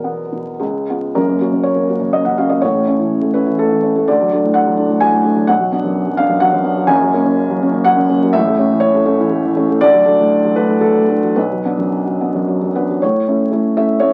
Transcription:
felt piano
Already playing: E2 B2 A#4
0.04 B3
0.32 B2
0.60 C#2 G#4
0.90 B3 F4
1.15 F#1 F#2 A#4
1.29 A#3
1.41 C#4 F#4
1.52 C#3
1.63 C#5
1.76 A#3
1.89 C#4 F#4
2.00 C#3
2.13 A#3 D#5
2.25 C#3 F#5
2.38 C#4 F#4 F5
2.49 A#3 D#5
2.61 A1 A2 C#5
2.76 A3
2.87 C#4 E4
3.00 E3
3.22 A3
3.34 C#4 E4 B4
3.46 E3
3.59 A3 A4
3.71 E3
3.83 C#4 E4
3.96 A3
4.08 D2 D5
4.20 F#3
4.32 A3 D4
4.44 A2
4.54 F#5
4.66 F#3
4.77 A3 D4
4.89 A2
5.00 F#3 G#5
5.12 A2
5.24 A3 D4
5.35 F#3
5.47 B1 F#5
5.60 F#3
5.72 B3 D4
5.83 F#2
6.07 F#3
6.17 B3 D4 F5
6.29 F#2
6.40 F#3 F#5
6.53 F#2
6.64 B3 D4
6.76 F#3
6.87 F#1 F#2 G#5
7.02 F#3
7.14 A#3 C#4
7.25 C#3
7.49 F#3
7.62 A#3 C#4
7.72 C#3
7.84 F#3 F#5
7.96 C#3
8.09 A#3 C#4
8.23 F#3
8.33 A1 A2 E5
8.47 A3
8.58 A3 C#4
8.71 E3
8.80 C#5
8.95 A3
9.05 A3 C#4
9.20 E3
9.30 A3
9.45 E3
9.56 A3 C#4
9.69 A3
9.81 D2 D5
9.94 F#3
10.05 A3 D4
10.19 A2
10.45 F#3
10.56 A3 D4 B4
10.69 A2
10.81 F#3 A4
10.96 A2
11.08 A3 D4
11.24 F#3
11.36 B1 B4
11.52 F#3
11.65 B3 D4
11.78 F#2
12.07 F#3
12.21 B3 D4
12.34 F#2
12.48 F#3
12.62 F#2
12.75 B3 D4 B4
12.89 F#3
13.02 A2 C#5
13.28 A3 C#4 E4
13.51 A3 C#4 E4
13.77 A3 C#4 E4 E5
14.00 A3 C#4 E4 C#5

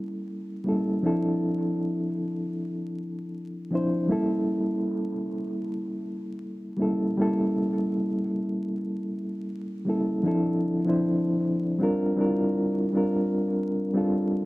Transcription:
reed electric piano
0.64 G3 A#3 C#4 E4
0.69 A4
1.03 F3 C4 D4 E4
1.07 A4
3.71 F3 C4 D4 E4
3.75 C5
4.08 G3 A#3 C#4 E4
4.12 A4
6.77 G3 A#3 C#4 E4
6.82 A4
7.17 G3 A#3 C#4 E4
7.21 A4
9.85 G3 A#3 C#4 E4
9.90 A4
10.23 F3 C4 D4 E4
10.28 A4
10.85 F3 C4 D4 E4
10.89 C5
11.79 G3 C4 D4 F4
11.83 A#4
12.16 G3 C4 D4 E4
12.21 A#4
12.26 F4
12.93 G3 C4 D4 F4
12.97 A#4
13.93 G3 C4 D4 F4
13.98 A4

